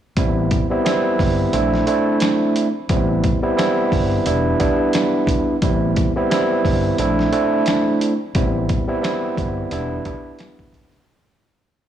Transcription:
0.17 A1 G3 B3 C4 E4, kick, closed hi-hat
0.51 kick, closed hi-hat
0.70 G3 B3 C4 E4
0.84 G3 B3 C4 E4, snare, closed hi-hat
1.19 G1, kick, open hi-hat
1.53 A#1 A3 C4 D4 E4, closed hi-hat
1.74 snare
1.87 A3 C4 D4 E4, closed hi-hat
2.20 snare, closed hi-hat
2.56 closed hi-hat
2.89 A1 G3 B3 C4 E4, kick, closed hi-hat
3.24 kick, closed hi-hat
3.42 G3 B3 C4 E4
3.57 G3 B3 C4 E4, snare, closed hi-hat
3.92 G1, kick, open hi-hat
4.26 E1 G3 B3 D4 E4, closed hi-hat
4.60 G3 B3 D4 E4, kick, closed hi-hat
4.93 snare, closed hi-hat
5.27 kick, closed hi-hat
5.62 A1 G3 B3 C4 E4, kick, closed hi-hat
5.96 kick, closed hi-hat
6.16 G3 B3 C4 E4
6.30 G3 B3 C4 E4, snare, closed hi-hat
6.65 G1, kick, open hi-hat
6.98 A#1 A3 C4 D4 E4, closed hi-hat
7.19 snare
7.32 A3 C4 D4 E4, closed hi-hat
7.66 snare, closed hi-hat
8.01 closed hi-hat
8.35 A1 G3 B3 C4 E4, kick, closed hi-hat
8.69 kick, closed hi-hat
8.88 G3 B3 C4 E4
9.02 G3 B3 C4 E4, snare, closed hi-hat
9.37 G1, kick, closed hi-hat
9.71 E1 G3 B3 D4 E4, closed hi-hat
10.05 G3 B3 D4 E4, kick, closed hi-hat
10.39 snare, closed hi-hat
10.59 kick
10.73 kick, closed hi-hat
10.92 closed hi-hat

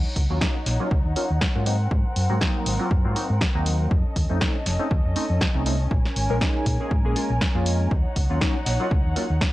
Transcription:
Already playing: D#4 C#5 F#5
0.16 C#2, kick, open hi-hat
0.30 D#2 F#3 A#3 C#4 F4
0.41 F#3 A#3 D#4, kick, snare
0.66 A#1, snare, open hi-hat
0.80 F#3 A#3 C#4 F4
0.91 C#2, kick
1.05 D#2
1.16 F#3 A#3 C#4 F4, open hi-hat
1.30 D#2
1.41 kick, snare
1.55 G#2 F#3 A#3 C#4 F4
1.66 F#3 A#3 C4 D#4 A#4, open hi-hat
1.91 G#2, kick
2.16 F#2, open hi-hat
2.30 G#2 F#3 A#3 C4 F#4
2.41 F#3 A#3 C4 D#4, kick, snare
2.66 G#1, open hi-hat
2.79 F#3 A#3 C4 F4
2.91 F#2, kick
3.04 G#2 F#3 A#3 C4 F4
3.15 F#3 A#3 C4 D#4, open hi-hat
3.30 G#2
3.41 kick, snare
3.55 D#2 F#3 A#3 C4 D#4
3.66 open hi-hat
3.91 F2 C#4 A4 D#5, kick
4.16 D#2, kick, open hi-hat
4.29 F2 A3 C4 C#4 D#4
4.40 A3 C4 C#4, kick, snare
4.66 F1, snare, open hi-hat
4.79 A3 C4 C#4 D#4
4.91 D#2, kick
5.05 F2
5.16 A3 C4 C#4 D#4, open hi-hat
5.30 F2
5.41 kick, snare
5.55 C2 A3 C4 C#4 D#4
5.66 A3 C4 C#4 D#4, open hi-hat
5.91 A#1 A#4 G#5, kick
6.05 snare
6.16 G#1, open hi-hat
6.30 A#1 G#3 A#3 C#4 A#4
6.41 G#3 A#3 C#4 D#4, kick, snare
6.66 A#2, kick, open hi-hat
6.80 G#3 A#3 C#4 G#4
6.91 G#2, kick
7.05 A#1 G#3 A#3 C#4 G#4
7.16 G#3 A#3 C#4 F4, open hi-hat
7.30 A#1
7.41 kick, snare
7.55 F2 G#3 A#3 C#4 F4
7.66 open hi-hat
7.91 D#2 D#4 C#5 F#5, kick
8.16 C#2, kick, open hi-hat
8.30 D#2 F#3 A#3 C#4 F4
8.41 F#3 A#3 C#4 D#4, kick, snare
8.66 A#1, snare, open hi-hat
8.80 F#3 A#3 C#4 F4
8.91 C#2, kick
9.05 D#2
9.16 F#3 A#3 C#4 F4, open hi-hat
9.30 D#2
9.41 kick, snare

